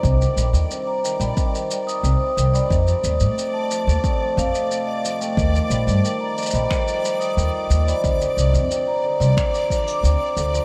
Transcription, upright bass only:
X:1
M:4/4
L:1/16
Q:1/4=90
K:Eblyd
V:1 name="Upright bass" clef=bass
C,, z B,,, E,, z3 B,,, z4 C,, z C,, z | F,, z E,, A,, z3 E,, z2 F,, z4 z | E,, z B,,, G,, z3 B,,, z4 E,, z E,, z | D,, z C,, F,, z3 C,, z4 D,, z D,, z |]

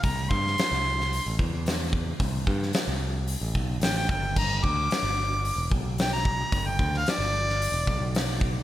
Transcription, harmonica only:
X:1
M:4/4
L:1/16
Q:1/4=111
K:C
V:1 name="Harmonica"
_b2 c'8 z6 | z12 g g g2 | _b2 d'8 z2 g b3- | _b g2 f d8 z4 |]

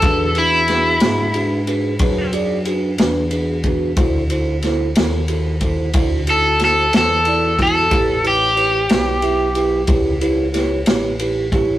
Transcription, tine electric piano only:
X:1
M:12/8
L:1/8
Q:3/8=61
K:Amix
V:1 name="Tine electric piano"
[DF^GB] [DFGB] [DFGB] [DFGB] [DFGB] [DFGB] [DFGB] [DFGd] [DFGB] [DFGB] [DFGB] [DFGB] | [EFA=c] [EFAc] [EFAc] [EFAc] [EFAc] [EFAc] [EFAc] [EFAc] [EFAc] [EFAc] [EFAd] [EFAc] | [EGBc] [EGBc] [EGBc] [EGBc] [EGBe] [EGBe] [EGBc] [EGBc] [EGBc] [EGBc] [EGBc] [EGBc] |]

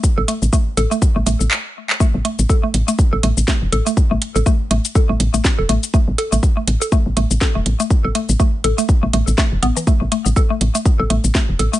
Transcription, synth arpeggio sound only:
X:1
M:4/4
L:1/16
Q:"Swing 16ths" 1/4=122
K:Ephr
V:1 name="Synth arpeggio sound"
z A A, z A, z A A, z A, A, z4 z | A, z A, z A A, z A, z A A, z A, z A A, | z A, z A A, z A, z A A, z A, z A A, z | A, z A A, z A, z A A, z A, z A A, z A, |
z A A, z A, z A A, z A, A, z A, z B, E, | A, z A, z A A, z A, z A A, z A, z A A, |]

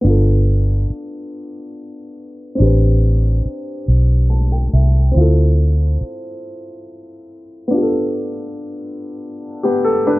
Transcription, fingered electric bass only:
X:1
M:6/8
L:1/8
Q:3/8=47
K:Gmix
V:1 name="Fingered electric bass" clef=bass
G,,,2 z4 | A,,,2 z B,,,2 C,, | D,,2 z4 | z6 |]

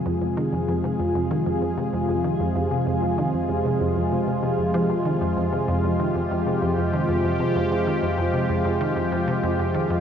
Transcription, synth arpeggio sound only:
X:1
M:4/4
L:1/16
Q:1/4=96
K:Fm
V:1 name="Synth arpeggio sound" clef=bass
F,, F,, E, F,, F,, C, F,, F,, E, F,, F,, C, F,, F,, E, F,, | F,, C, F,, F,, E, F,, F,, C, F,, F,, C, C, C, F,, F, C, | E, F,, F,, C, F,, F,, E, F,, F,, C, F,, F,, E, F,, F,, C, | F,, F,, E, F,, F,, C, F,, F,, E, F,, F,, C, F,, F,, E, F,, |]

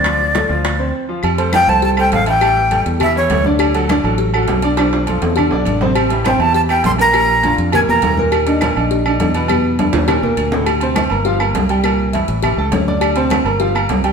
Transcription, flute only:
X:1
M:4/4
L:1/8
Q:1/4=204
K:Dm
V:1 name="Flute"
d6 z2 | z2 g a a g f g- | g3 z e ^c2 z | z8 |
z8 | z2 g a a g c' b- | b3 z ^g b2 z | z8 |
z8 | z8 | z8 | z8 |]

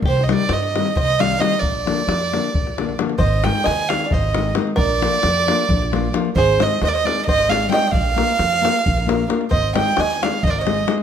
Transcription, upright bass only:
X:1
M:7/8
L:1/8
Q:1/4=133
K:Ablyd
V:1 name="Upright bass" clef=bass
C,,2 G,,2 C,,3 | B,,,2 F,,2 B,,,3 | A,,,2 E,,2 A,,,3 | B,,,2 F,,2 B,,,3 |
A,,,2 E,,2 A,,,3 | B,,,2 F,,2 B,,,3 | A,,,2 E,,2 A,,,3 |]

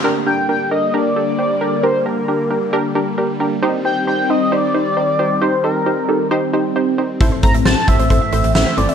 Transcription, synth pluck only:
X:1
M:4/4
L:1/8
Q:1/4=134
K:Gm
V:1 name="Synth pluck"
[DGB] [DGB] [DGB] [DGB] [DGB] [DGA] [DGc] [DGB] | [DGB] [DGB] [DGB] [DGB] [DGB] [DGB] [DGB] [DGB] | [EGc] [EGc] [EGc] [EGc] [EGc] [EGc] [EGc] [EGc] | [EGc] [EGc] [EGc] [EGA] [EGc] [EGc] [EGc] [EGc] |
[=EAc] [EAc] [EAc] [EAc] [EAc] [EAc] [EAc] [EAc] |]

